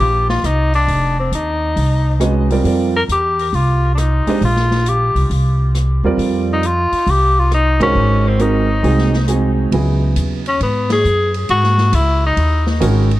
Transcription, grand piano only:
0.00 0.35 F3 soft
0.00 0.35 A#3 soft
0.00 0.35 D#4 soft
0.00 0.36 G#4 soft
0.00 0.36 C5 medium
2.20 2.47 G#3 medium
2.20 2.47 C#4 soft
2.20 2.47 F#4 soft
2.20 2.47 B4 medium
2.20 2.48 D#5 medium
2.51 2.63 G3 medium
2.51 2.64 C4 medium
2.51 2.64 F4 medium
2.51 2.64 A#4 medium
2.51 2.65 D5 medium
2.65 2.91 G3 medium
2.65 2.92 C4 soft
2.65 2.92 F4 soft
2.65 2.92 A#4 soft
2.65 2.92 D5 medium
4.27 4.40 G#3 medium
4.27 4.40 D4 medium
4.27 4.41 G4 medium
4.27 4.41 C5 medium
4.27 4.41 D#5 medium
6.04 6.60 G3 medium
6.04 6.60 C4 medium
6.04 6.60 F4 medium
6.04 6.60 A#4 medium
6.04 6.61 D5 medium
7.80 8.36 G#3 medium
7.80 8.37 D#4 medium
7.80 8.37 F#4 medium
7.80 8.37 A#4 medium
7.80 8.36 C5 medium
8.39 8.66 G#3 medium
8.39 8.66 C4 medium
8.39 8.66 D#4 soft
8.39 8.66 F#4 medium
8.39 8.67 A#4 medium
8.83 9.10 G#3 medium
8.83 9.10 C4 medium
8.83 9.10 D#4 medium
8.83 9.11 F#4 medium
8.83 9.11 G#4 medium
9.27 9.72 G#3 medium
9.27 9.72 C4 medium
9.27 9.72 D#4 soft
9.27 9.72 F#4 soft
9.27 9.72 G#4 medium
9.72 10.40 C#3 medium
9.72 10.40 F#3 soft
9.72 10.40 B3 soft
9.72 10.40 E4 soft
9.72 10.41 G#4 medium
12.80 13.08 D#3 medium
12.80 13.08 G#3 medium
12.80 13.08 C#4 medium
12.80 13.08 F#4 medium
12.80 13.09 A#4 medium

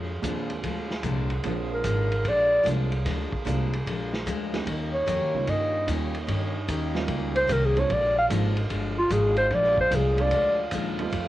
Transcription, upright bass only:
0.00 0.21 F2 medium
0.23 0.62 D#2 medium
0.63 1.02 D2 medium
1.03 1.42 C2 medium
1.44 1.83 A#1 medium
1.84 2.23 G#1 medium
2.25 2.64 A#1 medium
2.65 3.04 C2 medium
3.06 3.30 D2 medium
3.33 muted upright bass stroke soft
3.46 3.85 C2 medium
3.87 4.26 A#1 medium
4.26 4.65 D2 medium
4.67 5.06 D#2 medium
5.07 5.20 F2 medium
5.20 5.33 D#2 medium
5.34 5.46 C#2 medium
5.47 5.86 G2 medium
5.87 6.27 D#2 medium
6.28 6.67 G2 medium
6.68 7.07 D#2 medium
7.08 7.48 C#2 medium
7.49 7.88 C2 loud
7.90 8.29 A#1 medium
8.30 8.69 G#1 medium
8.70 9.10 G1 medium
9.10 9.50 G#1 medium
9.51 9.90 A#1 medium
9.91 10.30 C2 medium
10.32 10.71 D2 medium
10.72 11.11 D#2 medium
11.13 11.28 F2 medium

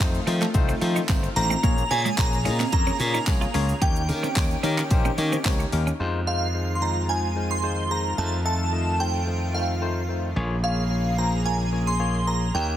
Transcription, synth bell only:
1.36 1.92 A#5 loud
1.91 2.19 G#5 medium
2.18 2.71 A#5 loud
2.73 3.85 A#5 loud
3.82 5.41 G5 medium
6.27 6.72 F5 medium
6.75 6.82 C6 medium
6.82 7.10 A#5 medium
7.09 7.52 G#5 medium
7.51 7.92 C6 loud
7.91 8.19 A#5 medium
8.18 8.30 A5 loud
8.46 9.02 A5 medium
9.00 9.56 G5 medium
9.54 10.05 F5 medium
10.64 11.20 F5 medium
11.18 11.46 A#5 medium
11.46 11.88 G#5 medium
11.87 12.28 C6 loud
12.27 12.55 A#5 medium
12.55 12.77 G5 loud

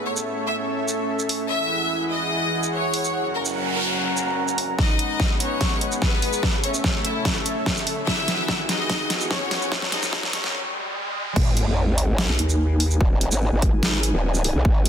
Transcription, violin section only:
0.06 0.14 C#5 medium
0.47 0.55 E5 medium
1.50 2.03 E5 loud
2.12 2.65 D#5 medium
2.73 3.27 C#5 medium
3.35 3.43 A#4 medium
3.76 3.84 A#4 medium
4.79 5.32 D#4 medium
4.79 5.32 D#5 medium
5.40 5.94 C#4 medium
5.40 5.94 C#5 medium
6.02 6.55 B3 medium
6.02 6.55 B4 loud
6.63 6.89 C#4 medium
6.63 6.71 C#5 medium
7.05 7.30 E4 medium
7.05 7.13 E5 medium
8.07 8.61 E4 medium
8.07 8.61 E5 loud
8.69 9.23 D#4 medium
8.69 9.23 D#5 loud
9.30 9.84 C#4 medium
9.30 9.84 C#5 loud
9.92 10.18 D#4 medium
9.92 10.00 D#5 medium
10.33 10.59 C#4 medium
10.33 10.41 C#5 medium

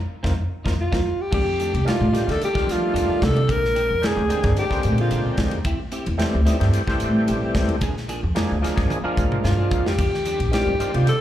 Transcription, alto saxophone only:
0.80 1.22 F4 medium
1.21 1.33 G4 medium
1.33 1.83 G4 medium
1.87 2.32 F4 medium
2.31 2.42 A4 medium
2.44 2.73 G4 medium
2.71 3.25 F4 medium
3.23 3.53 A4 loud
3.51 4.07 A#4 loud
4.06 4.58 G#4 medium
4.59 4.96 G4 medium
5.00 5.36 F4 medium
9.44 9.88 F4 medium
9.86 10.53 G4 medium
10.53 10.92 G4 medium
10.96 11.07 F4 medium
11.08 11.21 A4 loud

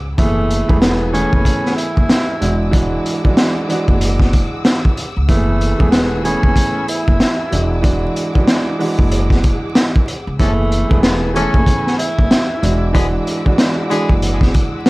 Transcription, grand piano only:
0.18 0.65 E3 loud
0.18 0.65 A3 medium
0.18 0.65 B3 medium
0.18 0.66 G#4 loud
0.68 1.10 E3 medium
0.68 1.10 A3 medium
0.68 1.11 B3 medium
0.68 1.11 G#4 loud
1.12 2.33 E3 medium
1.12 2.33 A3 medium
1.12 2.33 B3 medium
1.12 2.34 G#4 loud
2.40 2.70 E3 medium
2.40 2.70 G#3 medium
2.40 2.71 D4 medium
2.40 2.72 F#4 medium
2.71 3.19 E3 loud
2.71 3.19 G#3 medium
2.71 3.20 D4 medium
2.71 3.20 F#4 loud
3.24 3.66 E3 loud
3.24 3.66 G#3 medium
3.24 3.66 D4 medium
3.24 3.67 F#4 loud
3.69 5.02 E3 loud
3.69 5.02 G#3 medium
3.69 5.03 D4 medium
3.69 5.03 F#4 loud
5.29 5.76 E3 loud
5.29 5.76 A3 medium
5.29 5.76 B3 medium
5.29 5.76 G#4 medium
5.78 6.21 E3 medium
5.78 6.21 A3 medium
5.78 6.21 B3 medium
5.78 6.22 G#4 loud
6.23 7.43 E3 medium
6.23 7.44 A3 medium
6.23 7.44 B3 medium
6.23 7.44 G#4 loud
7.51 7.81 E3 medium
7.51 7.81 G#3 medium
7.51 7.82 D4 medium
7.51 7.82 F#4 medium
7.82 8.30 E3 loud
7.82 8.30 G#3 medium
7.82 8.30 D4 loud
7.82 8.31 F#4 loud
8.35 8.76 E3 loud
8.35 8.77 G#3 medium
8.35 8.77 D4 medium
8.35 8.77 F#4 loud
8.79 10.13 E3 loud
8.79 10.13 G#3 medium
8.79 10.13 D4 medium
8.79 10.13 F#4 loud
10.40 10.86 E3 loud
10.40 10.86 A3 medium
10.40 10.87 B3 medium
10.40 10.87 G#4 medium
10.89 11.31 E3 medium
10.89 11.32 A3 medium
10.89 11.32 B3 medium
10.89 11.32 G#4 loud
11.34 12.54 E3 loud
11.34 12.54 A3 medium
11.34 12.55 B3 medium
11.34 12.55 G#4 loud
12.62 12.91 E3 medium
12.62 12.92 G#3 medium
12.62 12.93 D4 medium
12.62 12.93 F#4 medium
12.93 13.40 E3 loud
12.93 13.41 G#3 medium
12.93 13.41 D4 loud
12.93 13.41 F#4 loud
13.45 13.87 E3 medium
13.45 13.87 G#3 medium
13.45 13.88 D4 medium
13.45 13.88 F#4 loud
13.90 14.90 E3 loud
13.90 14.90 G#3 medium
13.90 14.90 D4 medium
13.90 14.90 F#4 loud

